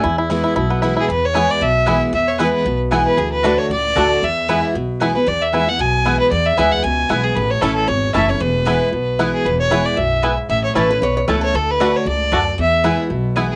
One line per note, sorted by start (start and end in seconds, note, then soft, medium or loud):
0.00 0.54 E2 medium
0.00 0.17 E4 medium
0.00 0.16 G#5 loud
0.04 0.42 E2 loud
0.18 0.29 E4 medium
0.30 0.55 E3 medium
0.30 0.56 G#3 loud
0.30 0.56 B3 loud
0.30 0.43 E4 medium
0.30 0.56 E4 loud
0.44 0.55 E4 medium
0.56 0.94 B1 medium
0.56 1.06 B2 medium
0.56 0.81 E4 medium
0.70 1.06 B3 medium
0.82 1.08 E3 medium
0.82 1.08 G#3 medium
0.82 1.08 B3 medium
0.82 0.95 E4 medium
0.82 1.08 E4 loud
0.96 1.09 E4 medium
0.96 1.09 G#4 medium
1.09 1.47 E2 loud
1.09 1.59 E2 medium
1.09 1.27 B4 medium
1.25 1.52 C#5 loud
1.34 1.60 E3 medium
1.34 1.60 G#3 loud
1.34 1.44 B3 medium
1.34 1.41 B3 medium
1.34 1.61 B3 loud
1.34 1.45 E4 medium
1.34 1.37 E4 medium
1.34 1.61 E4 loud
1.34 1.45 B4 loud
1.34 1.45 G#5 medium
1.51 1.64 D5 loud
1.61 1.99 B1 medium
1.61 2.11 B2 medium
1.61 2.02 E5 loud
1.86 2.12 E3 medium
1.86 2.12 G#3 medium
1.86 1.97 B3 medium
1.86 1.94 B3 medium
1.86 2.12 B3 medium
1.86 1.97 E4 medium
1.86 1.90 E4 medium
1.86 2.13 E4 medium
1.86 1.97 B4 medium
1.86 1.97 G#5 loud
2.13 2.63 E2 medium
2.13 2.51 E2 medium
2.13 2.30 E5 loud
2.28 2.39 C#5 medium
2.38 2.64 E3 loud
2.38 2.65 G#3 loud
2.38 2.49 B3 medium
2.38 2.46 B3 medium
2.38 2.65 B3 loud
2.38 2.49 E4 loud
2.38 2.42 E4 medium
2.38 2.65 E4 loud
2.38 2.49 B4 medium
2.38 2.78 B4 medium
2.38 2.49 G#5 medium
2.65 3.03 B1 medium
2.65 3.16 B2 medium
2.91 3.17 E3 medium
2.91 3.17 G#3 medium
2.91 3.01 B3 loud
2.91 2.98 B3 medium
2.91 3.17 B3 medium
2.91 3.01 E4 medium
2.91 2.94 E4 medium
2.91 3.18 E4 loud
2.91 3.02 B4 loud
2.91 3.02 G#5 loud
3.06 3.19 B4 medium
3.17 3.56 D2 medium
3.17 3.43 D3 medium
3.17 3.31 G#4 medium
3.31 3.59 B4 medium
3.43 3.69 D3 medium
3.43 3.53 A3 medium
3.43 3.50 A3 medium
3.43 3.69 A3 medium
3.43 3.51 D4 medium
3.43 3.70 D4 loud
3.43 3.54 F#4 loud
3.43 3.51 F#4 medium
3.43 3.70 F#4 loud
3.43 3.54 D5 medium
3.43 3.54 A5 medium
3.58 3.70 C#5 medium
3.69 3.92 C#2 medium
3.69 4.21 A2 medium
3.69 4.25 D5 loud
3.95 4.19 D2 medium
3.95 4.21 D3 medium
3.95 4.06 A3 medium
3.95 4.21 A3 medium
3.95 4.03 A3 medium
3.95 4.22 D4 medium
3.95 4.03 D4 medium
3.95 4.06 F#4 medium
3.95 4.22 F#4 loud
3.95 4.03 F#4 medium
3.95 4.06 D5 medium
3.95 4.06 A5 loud
4.22 4.60 E2 medium
4.22 4.73 E2 medium
4.22 4.64 E5 loud
4.48 4.74 E3 medium
4.48 4.74 G#3 loud
4.48 4.58 B3 medium
4.48 4.55 B3 medium
4.48 4.74 B3 medium
4.48 4.59 E4 medium
4.48 4.51 E4 medium
4.48 4.74 E4 loud
4.48 4.59 B4 medium
4.48 4.59 G#5 medium
4.75 5.13 B1 medium
4.75 5.25 B2 medium
5.00 5.15 E3 medium
5.00 5.15 G#3 medium
5.00 5.11 B3 medium
5.00 5.08 B3 medium
5.00 5.15 B3 medium
5.00 5.11 E4 medium
5.00 5.04 E4 medium
5.00 5.14 E4 loud
5.00 5.11 B4 loud
5.00 5.11 G#5 medium
5.15 5.27 B3 soft
5.15 5.26 E4 medium
5.15 5.29 B4 medium
5.26 5.77 E2 medium
5.26 5.65 E2 medium
5.26 5.43 D5 loud
5.42 5.70 E5 loud
5.52 5.67 E3 medium
5.52 5.67 G#3 loud
5.52 5.63 B3 medium
5.52 5.60 B3 medium
5.52 5.67 B3 medium
5.52 5.63 E4 medium
5.52 5.56 E4 medium
5.52 5.66 E4 loud
5.52 5.63 B4 medium
5.52 5.63 G#5 loud
5.67 5.80 B3 soft
5.67 5.79 E4 medium
5.67 5.81 F#5 loud
5.79 6.17 B1 medium
5.79 6.29 B2 medium
5.79 6.19 G#5 loud
6.05 6.30 E3 medium
6.05 6.30 G#3 medium
6.05 6.15 B3 medium
6.05 6.12 B3 medium
6.05 6.31 B3 medium
6.05 6.16 E4 medium
6.05 6.08 E4 medium
6.05 6.31 E4 medium
6.05 6.16 B4 medium
6.05 6.16 G#5 loud
6.20 6.31 B4 medium
6.31 6.82 E2 medium
6.31 6.51 E2 medium
6.31 6.47 D5 loud
6.46 6.73 E5 loud
6.57 6.80 D2 medium
6.57 6.83 E3 medium
6.57 6.83 G#3 loud
6.57 6.67 B3 medium
6.57 6.64 B3 medium
6.57 6.83 B3 medium
6.57 6.68 E4 medium
6.57 6.60 E4 medium
6.57 6.84 E4 loud
6.57 6.68 B4 medium
6.57 6.68 G#5 medium
6.72 6.84 F#5 loud
6.83 7.06 C#2 medium
6.83 7.34 B2 medium
6.83 7.25 G#5 loud
7.09 7.32 B1 medium
7.09 7.35 E3 medium
7.09 7.35 G#3 medium
7.09 7.20 B3 medium
7.09 7.17 B3 medium
7.09 7.35 B3 medium
7.09 7.20 E4 loud
7.09 7.13 E4 medium
7.09 7.36 E4 medium
7.09 7.20 B4 loud
7.09 7.20 G#5 loud
7.23 7.37 G#4 medium
7.35 7.55 A1 loud
7.35 7.86 A2 medium
7.35 7.52 B4 medium
7.51 7.63 C#5 loud
7.61 7.85 A1 medium
7.61 7.87 E3 medium
7.61 7.72 A3 medium
7.61 7.69 A3 medium
7.61 7.88 A3 loud
7.61 7.69 C#4 medium
7.61 7.88 C#4 loud
7.61 7.72 E4 medium
7.61 7.69 E4 medium
7.61 7.88 E4 medium
7.61 7.74 A4 medium
7.61 7.72 C#5 medium
7.61 7.72 A5 loud
7.75 7.89 A4 medium
7.88 8.11 G#1 medium
7.88 8.38 E2 medium
7.88 8.14 C#5 medium
8.13 8.37 F#1 medium
8.13 8.28 E3 medium
8.13 8.24 A3 loud
8.13 8.21 A3 medium
8.13 8.29 A3 medium
8.13 8.21 C#4 medium
8.13 8.29 C#4 medium
8.13 8.24 E4 medium
8.13 8.21 E4 medium
8.13 8.27 E4 medium
8.13 8.24 C#5 loud
8.13 8.31 E5 loud
8.13 8.24 A5 loud
8.28 8.41 C#4 medium
8.28 8.40 E4 medium
8.28 8.43 C#5 medium
8.40 8.78 E1 medium
8.40 8.91 E2 medium
8.40 9.19 B4 loud
8.66 8.91 E3 medium
8.66 8.92 G#3 medium
8.66 8.76 B3 medium
8.66 8.92 B3 medium
8.66 8.73 B3 medium
8.66 8.77 E4 medium
8.66 8.92 E4 medium
8.66 8.69 E4 medium
8.66 8.77 B4 medium
8.66 8.77 G#5 medium
8.93 9.31 B1 medium
8.93 9.43 B2 medium
9.19 9.44 E3 medium
9.19 9.44 G#3 medium
9.19 9.29 B3 medium
9.19 9.26 B3 medium
9.19 9.45 B3 medium
9.19 9.29 E4 loud
9.19 9.22 E4 medium
9.19 9.45 E4 medium
9.19 9.29 B4 loud
9.19 9.30 G#5 medium
9.33 9.47 G#4 medium
9.45 9.83 E1 medium
9.45 9.96 E2 medium
9.45 9.59 B4 medium
9.60 9.87 C#5 loud
9.71 9.96 E3 medium
9.71 9.96 G#3 loud
9.71 9.81 B3 medium
9.71 9.78 B3 medium
9.71 9.96 B3 medium
9.71 9.81 E4 medium
9.71 9.74 E4 medium
9.71 9.97 E4 loud
9.71 9.81 B4 medium
9.71 9.81 G#5 loud
9.85 9.98 D5 medium
9.96 10.35 B1 medium
9.96 10.22 F#2 medium
9.96 10.37 E5 medium
10.22 10.48 G#2 medium
10.22 10.33 B3 medium
10.22 10.30 B3 medium
10.22 10.33 E4 medium
10.22 10.26 E4 medium
10.22 10.33 B4 loud
10.22 10.33 G#5 medium
10.49 10.68 A1 loud
10.49 10.99 A2 medium
10.49 10.63 E5 loud
10.64 10.75 C#5 medium
10.75 10.98 A1 medium
10.75 10.90 E3 medium
10.75 10.85 A3 medium
10.75 10.82 A3 medium
10.75 10.90 A3 medium
10.75 10.82 C#4 medium
10.75 10.90 C#4 loud
10.75 10.86 E4 medium
10.75 10.82 E4 medium
10.75 10.89 E4 medium
10.75 10.91 A4 medium
10.75 11.13 B4 medium
10.75 10.86 C#5 medium
10.75 10.86 A5 loud
10.90 11.02 C#4 medium
10.90 11.01 E4 medium
10.90 11.02 B4 medium
11.02 11.24 B1 medium
11.02 11.52 E2 medium
11.02 11.16 C#5 loud
11.17 11.27 C#5 loud
11.28 11.50 C#2 medium
11.28 11.53 E3 medium
11.28 11.34 A3 medium
11.28 11.38 A3 medium
11.28 11.53 A3 medium
11.28 11.34 C#4 medium
11.28 11.53 C#4 medium
11.28 11.38 E4 medium
11.28 11.35 E4 medium
11.28 11.54 E4 medium
11.28 11.41 B4 loud
11.28 11.38 C#5 loud
11.28 11.38 A5 loud
11.41 11.59 A4 medium
11.41 11.57 C#5 medium
11.54 11.92 D2 medium
11.54 11.79 D3 medium
11.54 11.72 A4 medium
11.71 11.98 B4 loud
11.80 12.05 D3 medium
11.80 11.90 A3 medium
11.80 11.87 A3 medium
11.80 12.05 A3 medium
11.80 11.87 D4 medium
11.80 12.06 D4 loud
11.80 11.90 F#4 medium
11.80 11.87 F#4 medium
11.80 12.06 F#4 loud
11.80 11.90 D5 medium
11.80 11.91 A5 medium
11.96 12.07 C#5 medium
12.06 12.28 C#2 medium
12.06 12.31 G#2 medium
12.06 12.56 D5 medium
12.32 12.54 D2 medium
12.32 12.57 F#2 medium
12.32 12.39 A3 medium
12.32 12.42 A3 loud
12.32 12.39 D4 medium
12.32 12.42 F#4 loud
12.32 12.39 F#4 medium
12.32 12.42 D5 loud
12.32 12.42 A5 loud
12.58 13.08 E2 medium
12.58 12.96 E2 medium
12.58 12.97 E5 loud
12.84 13.09 E3 medium
12.84 13.09 G#3 medium
12.84 12.94 B3 medium
12.84 12.90 B3 medium
12.84 13.09 B3 loud
12.84 12.94 E4 medium
12.84 12.86 E4 medium
12.84 13.10 E4 medium
12.84 12.94 B4 medium
12.84 12.94 G#5 loud
13.10 13.48 B1 medium
13.10 13.55 B2 medium
13.36 13.55 E3 medium
13.36 13.55 G#3 medium
13.36 13.46 B3 medium
13.36 13.43 B3 medium
13.36 13.55 B3 medium
13.36 13.46 E4 medium
13.36 13.39 E4 medium
13.36 13.55 E4 medium
13.36 13.46 B4 loud
13.36 13.46 G#5 medium
13.51 13.55 G#4 medium